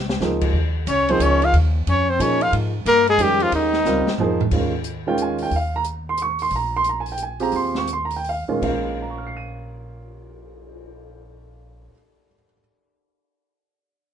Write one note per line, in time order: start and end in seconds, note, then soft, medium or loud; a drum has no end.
0.00 0.20 C2 medium
0.09 snare medium
0.21 0.52 C#2 medium
0.21 0.54 F3 medium
0.21 0.54 A#3 medium
0.21 0.55 D#4 soft
0.21 0.55 G#4 medium
0.21 snare medium
0.41 kick medium
0.41 crash medium
0.53 0.86 D#2 medium
0.87 1.19 C2 medium
0.87 1.11 C#4 medium
0.87 1.13 C#5 medium
0.87 hi-hat pedal medium
0.87 ride medium
1.09 1.52 F3 medium
1.09 1.52 A#3 medium
1.09 1.23 C4 medium
1.09 1.52 D#4 medium
1.09 1.52 G#4 medium
1.09 1.24 C5 medium
1.09 ride soft
1.20 1.52 C#2 medium
1.20 1.46 C#4 medium
1.20 1.46 C#5 medium
1.20 hi-hat pedal medium
1.20 ride medium
1.42 1.55 F4 medium
1.42 1.55 F5 medium
1.42 ride soft
1.53 1.86 D#2 medium
1.53 ride medium
1.87 2.19 F2 medium
1.87 2.12 C#4 medium
1.87 2.12 C#5 medium
1.87 ride medium
2.10 2.22 C4 medium
2.10 2.24 C5 medium
2.19 2.52 A#2 medium
2.19 2.70 F3 medium
2.19 2.70 A#3 soft
2.19 2.43 C#4 medium
2.19 2.70 D#4 soft
2.19 2.70 G#4 medium
2.19 2.44 C#5 medium
2.19 hi-hat pedal medium
2.19 ride medium
2.41 2.53 F4 medium
2.41 2.54 F5 medium
2.41 ride soft
2.52 2.85 G#2 medium
2.52 ride medium
2.86 3.17 G2 medium
2.86 3.06 A#3 medium
2.86 3.07 A#4 loud
2.86 hi-hat pedal medium
2.86 ride medium
3.07 3.23 G#3 medium
3.07 3.24 G#4 medium
3.07 ride soft
3.18 3.51 F2 medium
3.18 3.70 D#3 medium
3.18 3.45 G3 medium
3.18 3.70 G#3 soft
3.18 3.70 C#4 soft
3.18 3.70 G4 medium
3.18 hi-hat pedal medium
3.18 ride medium
3.22 3.44 G4 medium
3.40 3.54 F3 medium
3.40 3.54 F4 medium
3.40 ride soft
3.52 3.84 D#2 medium
3.52 4.16 D#3 medium
3.52 4.16 D#4 medium
3.52 ride medium
3.73 snare soft
3.85 4.05 C#2 medium
3.85 4.05 G3 medium
3.85 4.05 C4 medium
3.85 4.05 F4 medium
3.85 4.05 A#4 medium
3.85 snare soft
3.85 hi-hat pedal soft
4.07 snare medium
4.18 4.51 F2 medium
4.18 4.38 F3 medium
4.18 4.39 A#3 medium
4.18 4.39 D#4 medium
4.18 4.39 G#4 medium
4.18 floor tom medium
4.41 floor tom medium
4.51 5.47 D#2 medium
4.51 4.71 D#3 medium
4.51 4.72 G#3 soft
4.51 4.72 C#4 soft
4.51 4.72 F4 medium
4.51 kick medium
4.51 crash medium
4.84 closed hi-hat medium
5.07 5.49 D#3 medium
5.07 5.49 G#3 medium
5.07 5.50 C#4 medium
5.07 5.50 F4 medium
5.07 5.19 G5 medium
5.18 closed hi-hat medium
5.22 5.41 G#5 medium
5.38 open hi-hat soft
5.43 5.53 G5 medium
5.51 6.47 D#2 medium
5.51 open hi-hat soft
5.56 5.74 F5 medium
5.76 5.82 A#5 medium
5.84 closed hi-hat soft
6.09 6.19 C6 medium
6.17 closed hi-hat soft
6.22 6.41 C#6 medium
6.39 6.52 C6 medium
6.39 open hi-hat soft
6.51 7.49 A#1 medium
6.51 open hi-hat soft
6.56 6.74 A#5 medium
6.76 6.86 C6 loud
6.84 closed hi-hat soft
6.89 6.98 A#5 medium
7.00 7.09 G#5 medium
7.06 open hi-hat soft
7.12 7.20 G5 medium
7.18 closed hi-hat soft
7.23 7.42 G#5 medium
7.40 7.86 C4 medium
7.40 7.86 F4 medium
7.40 7.85 G4 medium
7.40 7.86 G#4 medium
7.40 7.53 A#5 medium
7.40 open hi-hat soft
7.52 8.45 D#2 medium
7.52 open hi-hat soft
7.56 7.76 C6 medium
7.75 7.89 C#6 medium
7.75 snare soft
7.88 closed hi-hat soft
7.93 8.02 C6 medium
8.05 8.15 A#5 medium
8.11 open hi-hat soft
8.17 8.26 G5 medium
8.24 open hi-hat soft
8.29 8.42 F5 medium
8.48 8.60 A#2 medium
8.48 8.99 D#3 medium
8.48 8.99 G#3 medium
8.48 8.61 C#4 medium
8.48 8.62 F4 medium
8.48 muted upright bass stroke soft
8.61 11.87 A#1 medium
8.61 11.91 A#2 medium
8.61 11.91 A#3 medium
8.61 11.92 C#4 soft
8.61 11.93 F4 medium
8.61 11.93 F5 medium
8.61 kick medium
8.61 crash medium
8.87 cymbal swell soft
9.02 12.28 A#5 soft
9.10 12.35 C#6 soft
9.18 12.43 F6 soft
9.27 12.52 C7 soft
9.37 12.60 D#7 soft